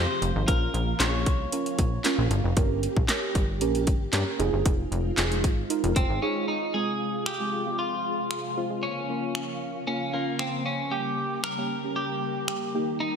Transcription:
0.00 0.46 C3 medium
0.00 2.53 F3 medium
0.00 0.46 G#3 medium
0.00 0.23 C4 medium
0.00 0.23 F4 medium
0.00 2.53 F4 medium
0.00 0.23 G4 medium
0.00 0.47 C5 loud
0.22 0.33 F1 medium
0.22 closed hi-hat medium
0.36 0.45 G#1 loud
0.48 4.36 C#3 medium
0.48 4.36 A#3 medium
0.48 0.76 C#4 medium
0.48 0.76 F4 medium
0.48 0.99 A#4 loud
0.48 0.76 A#4 medium
0.48 kick loud
0.48 closed hi-hat medium
0.74 0.94 A#1 medium
0.74 closed hi-hat medium
1.00 1.28 A#1 loud
1.00 1.28 C#4 medium
1.00 1.28 F4 medium
1.00 1.28 G#4 medium
1.00 2.27 C#5 loud
1.00 snare medium
1.00 clap loud
1.00 closed hi-hat loud
1.26 1.47 C2 medium
1.26 kick loud
1.26 closed hi-hat medium
1.52 1.80 C#4 medium
1.52 1.80 F4 medium
1.52 1.80 A#4 medium
1.52 closed hi-hat loud
1.66 closed hi-hat medium
1.79 1.99 A#1 medium
1.79 kick loud
1.79 closed hi-hat medium
2.04 2.32 C#4 loud
2.04 2.32 F4 medium
2.04 2.32 A#4 loud
2.04 snare medium
2.04 clap loud
2.04 closed hi-hat medium
2.19 2.28 A#1 medium
2.31 2.41 G1 medium
2.31 closed hi-hat medium
2.44 2.54 F1 loud
2.57 2.87 G1 loud
2.57 4.38 G3 medium
2.57 2.84 C#4 loud
2.57 4.38 G4 medium
2.57 2.84 G4 medium
2.57 2.85 A#4 loud
2.57 kick loud
2.57 closed hi-hat medium
2.83 closed hi-hat medium
2.97 3.06 A#1 medium
2.97 kick medium
3.08 3.36 C#4 medium
3.08 3.37 G4 medium
3.08 3.37 A#4 loud
3.08 snare medium
3.08 clap loud
3.08 closed hi-hat loud
3.35 3.63 G1 loud
3.35 kick loud
3.35 closed hi-hat medium
3.61 3.89 A#1 loud
3.61 3.89 C#4 medium
3.61 3.89 G4 medium
3.61 3.89 A#4 medium
3.61 closed hi-hat loud
3.75 closed hi-hat medium
3.87 4.07 G1 medium
3.87 kick loud
3.87 closed hi-hat medium
4.13 4.24 G2 loud
4.13 4.39 C#4 loud
4.13 4.40 G4 medium
4.13 4.40 A#4 loud
4.13 snare medium
4.13 clap loud
4.13 closed hi-hat medium
4.39 4.50 F1 loud
4.39 6.72 D#3 medium
4.39 6.72 G#3 medium
4.39 6.72 C4 medium
4.39 5.03 D#4 medium
4.39 5.03 F4 medium
4.39 6.72 F4 medium
4.39 5.03 G#4 loud
4.39 closed hi-hat medium
4.53 4.63 G1 medium
4.66 4.86 F1 loud
4.66 kick loud
4.66 closed hi-hat medium
4.92 5.12 F1 loud
4.92 closed hi-hat medium
5.17 5.46 F1 loud
5.17 5.45 D#4 medium
5.17 5.45 F4 medium
5.17 5.45 G#4 loud
5.17 snare medium
5.17 clap loud
5.17 closed hi-hat loud
5.32 closed hi-hat medium
5.44 5.64 G#1 loud
5.44 kick loud
5.44 closed hi-hat medium
5.70 5.97 D#4 medium
5.70 5.97 F4 medium
5.70 5.98 A#4 loud
5.70 closed hi-hat loud
5.84 5.93 F1 medium
5.84 closed hi-hat medium
5.96 6.07 F1 loud
5.96 6.22 C4 medium
5.96 kick loud
5.96 closed hi-hat medium
6.10 6.19 G#1 medium
6.22 6.48 C#4 medium
6.22 6.49 D#4 medium
6.22 6.49 F4 medium
6.22 6.50 G#4 loud
6.48 6.75 D#4 medium
6.74 8.81 C3 medium
6.74 10.88 F3 medium
6.74 8.81 G#3 medium
6.74 7.09 G#3 medium
6.74 7.09 C4 medium
6.74 8.81 F4 medium
6.74 7.09 F4 medium
6.74 7.26 G#4 medium
7.26 7.78 G4 medium
7.26 finger snap loud
7.40 7.53 G#3 medium
7.40 7.53 C4 medium
7.40 7.53 G#4 medium
7.66 8.14 G#3 medium
7.66 8.14 C4 medium
7.66 8.14 F4 medium
7.79 8.79 F4 medium
8.31 finger snap loud
8.57 8.64 G#3 medium
8.57 8.64 C4 medium
8.57 8.64 F4 loud
8.70 8.83 G#3 medium
8.70 8.83 C4 medium
8.70 8.83 F4 medium
8.83 12.70 C#3 medium
8.83 13.16 A#3 medium
8.83 9.83 C#4 medium
8.83 10.90 F4 medium
9.09 9.51 A#3 medium
9.09 9.51 C#4 medium
9.09 9.51 F4 medium
9.35 finger snap loud
9.87 10.02 A#3 medium
9.87 10.02 C#4 medium
9.87 10.12 C#4 medium
9.87 10.02 F4 medium
10.13 10.55 A#3 medium
10.13 10.40 A#3 medium
10.13 10.55 C#4 medium
10.13 10.55 F4 medium
10.39 10.65 C4 medium
10.39 finger snap loud
10.66 10.93 C#4 medium
10.91 12.73 G3 medium
10.91 11.26 A#3 medium
10.91 11.26 C#4 medium
10.91 11.40 G4 medium
10.91 11.26 G4 medium
10.91 12.73 G4 medium
11.44 11.96 A#4 loud
11.44 finger snap loud
11.58 11.71 A#3 medium
11.58 11.71 C#4 medium
11.58 11.71 G4 medium
11.84 12.31 A#3 medium
11.84 12.32 C#4 medium
11.84 12.32 G4 medium
11.96 12.96 G4 medium
12.48 finger snap medium
12.74 13.16 D#3 medium
12.74 13.16 G3 medium
12.74 13.16 A#3 medium
12.74 13.16 D#4 medium
12.74 13.16 G4 medium
12.74 13.16 G4 loud
13.00 13.16 D#4 medium

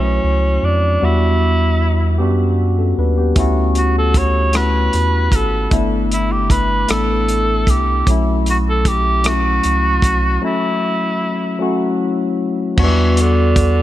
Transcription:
0.00 0.20 B1 loud
0.00 1.02 F#3 medium
0.00 1.03 A3 medium
0.00 0.67 C#4 medium
0.00 1.02 C#4 medium
0.00 1.02 E4 medium
0.00 0.77 F#4 medium
0.24 0.59 C#2 medium
0.63 0.98 F2 medium
0.63 1.06 D4 medium
1.01 2.21 E2 medium
1.01 1.93 G3 medium
1.01 1.93 B3 medium
1.01 1.94 D4 medium
1.01 2.20 E4 medium
1.01 1.94 F#4 medium
2.18 2.94 F#2 medium
2.18 2.58 B3 medium
2.18 2.59 D4 medium
2.18 2.59 F#4 medium
2.18 3.10 G4 medium
2.78 2.97 C#4 soft
2.78 2.97 A4 medium
2.98 3.33 D#2 medium
2.98 3.17 D4 medium
2.98 3.17 B4 medium
3.17 3.55 B3 soft
3.17 3.54 G4 medium
3.36 4.89 D2 loud
3.36 4.28 A3 medium
3.36 4.29 C#4 medium
3.36 4.29 E4 medium
3.36 4.30 F#4 medium
3.36 kick loud
3.36 closed hi-hat medium
3.75 3.95 F#4 medium
3.75 closed hi-hat soft
3.98 4.19 A4 medium
4.14 4.58 C#5 medium
4.14 kick medium
4.14 closed hi-hat medium
4.53 5.45 A3 medium
4.53 5.46 C#4 medium
4.53 5.47 E4 medium
4.53 5.47 F#4 medium
4.53 5.37 B4 loud
4.53 cross-stick loud
4.53 closed hi-hat medium
4.93 5.29 E2 medium
4.93 closed hi-hat soft
5.32 5.68 G#1 medium
5.32 5.73 A4 medium
5.32 kick medium
5.32 closed hi-hat medium
5.70 6.86 G1 loud
5.70 6.63 A3 medium
5.70 6.63 B3 medium
5.70 6.64 D4 medium
5.70 6.64 E4 medium
5.70 kick medium
5.70 closed hi-hat medium
6.12 6.33 E4 medium
6.12 closed hi-hat soft
6.32 6.53 G4 medium
6.50 6.92 B4 medium
6.50 kick medium
6.50 closed hi-hat medium
6.88 7.70 A1 loud
6.88 7.80 A3 medium
6.88 7.81 B3 medium
6.88 7.81 D4 medium
6.88 7.82 E4 medium
6.88 7.72 A4 medium
6.88 cross-stick loud
6.88 closed hi-hat medium
7.28 closed hi-hat soft
7.67 8.03 C2 medium
7.67 8.08 G4 medium
7.67 kick medium
7.67 closed hi-hat medium
8.07 9.60 B1 loud
8.07 8.99 F#3 medium
8.07 8.99 A3 medium
8.07 9.00 C#4 medium
8.07 9.00 E4 medium
8.07 kick medium
8.07 closed hi-hat medium
8.46 8.58 F#4 medium
8.46 closed hi-hat soft
8.70 8.90 A4 medium
8.85 9.29 G4 medium
8.85 kick medium
8.85 closed hi-hat medium
9.24 10.16 F#3 medium
9.24 10.17 A3 medium
9.24 10.17 C#4 medium
9.24 9.32 E4 medium
9.24 10.44 F#4 loud
9.24 cross-stick loud
9.24 closed hi-hat medium
9.33 10.21 F#4 medium
9.63 10.00 C#2 medium
9.63 closed hi-hat soft
10.02 10.38 C2 medium
10.02 kick medium
10.02 closed hi-hat medium
10.42 11.34 F#3 medium
10.42 11.34 A3 medium
10.42 11.35 C#4 medium
10.42 11.35 E4 medium
10.42 11.96 E4 medium
11.59 12.51 F#3 medium
11.59 12.52 A3 medium
11.59 12.52 C#4 medium
11.59 12.53 F#4 medium
12.76 13.82 E2 loud
12.76 12.83 F#3 medium
12.76 13.69 B3 medium
12.76 13.70 D4 medium
12.76 13.70 F#4 medium
12.76 kick loud
12.76 crash loud
12.82 13.23 E3 medium
12.82 13.72 G3 medium
13.17 closed hi-hat medium
13.21 13.82 D3 medium
13.56 kick loud
13.56 closed hi-hat medium

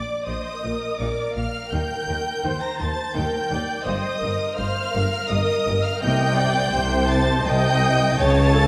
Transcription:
0.00 0.26 D5 medium
0.00 0.27 D5 medium
0.00 0.26 D6 loud
0.26 0.36 A#1 medium
0.26 0.35 A#2 medium
0.26 0.63 C5 medium
0.26 0.99 D#5 medium
0.26 0.98 D#6 loud
0.63 0.72 A#1 medium
0.63 0.71 A#2 medium
0.63 1.71 A#4 medium
0.99 1.08 A#1 medium
0.99 1.08 A#2 medium
0.99 1.36 D5 medium
0.99 1.36 D6 medium
1.35 1.45 A#1 medium
1.35 1.44 A#2 medium
1.35 1.72 F5 medium
1.35 1.72 F6 loud
1.72 1.80 D#2 medium
1.72 1.80 D#3 medium
1.72 2.42 A#4 medium
1.72 2.62 G5 medium
1.72 2.62 G6 loud
2.08 2.16 D#2 medium
2.08 2.16 D#3 medium
2.43 2.53 D#2 medium
2.43 2.51 D#3 medium
2.43 3.16 C5 medium
2.62 2.80 A#5 medium
2.62 2.80 A#6 loud
2.79 2.89 D#2 medium
2.79 2.87 D#3 medium
2.79 3.16 A5 loud
2.79 3.15 A6 loud
3.15 3.25 D#2 medium
3.15 3.23 D#3 medium
3.15 3.51 A#4 medium
3.15 3.85 G5 medium
3.15 3.86 G6 loud
3.50 3.59 D#2 medium
3.50 3.58 D#3 medium
3.50 3.87 D5 medium
3.85 3.95 G1 medium
3.85 3.93 G2 loud
3.85 4.22 C5 medium
3.85 4.58 D#5 medium
3.85 4.57 D#6 loud
4.22 4.31 G1 medium
4.22 4.30 G2 medium
4.22 4.58 A#4 medium
4.57 4.66 G1 medium
4.57 4.66 G2 medium
4.57 4.94 C5 medium
4.57 5.29 F5 loud
4.57 5.28 F6 loud
4.94 5.03 G1 loud
4.94 5.02 G2 medium
4.94 6.01 A#4 loud
5.30 5.39 G1 loud
5.30 5.38 G2 loud
5.30 5.83 D#5 loud
5.30 5.83 D#6 loud
5.66 5.75 G1 loud
5.66 5.74 G2 medium
5.83 6.01 F5 loud
5.83 6.01 F6 loud
6.00 6.65 C2 loud
6.00 6.64 C3 loud
6.00 6.36 D#5 loud
6.00 7.07 G5 loud
6.00 7.08 G6 loud
6.36 6.72 D5 loud
6.72 7.38 C2 loud
6.72 7.37 C3 loud
6.72 7.45 C5 loud
7.09 7.46 A5 loud
7.09 7.46 A6 loud
7.45 8.10 C2 loud
7.45 8.09 C3 loud
7.45 8.18 D#5 loud
7.45 8.18 G5 loud
7.45 8.19 G6 loud
8.18 8.67 C#2 loud
8.18 8.67 C#3 loud
8.18 8.54 C#5 loud
8.18 8.67 A5 loud
8.18 8.67 A6 loud
8.55 8.67 A4 loud

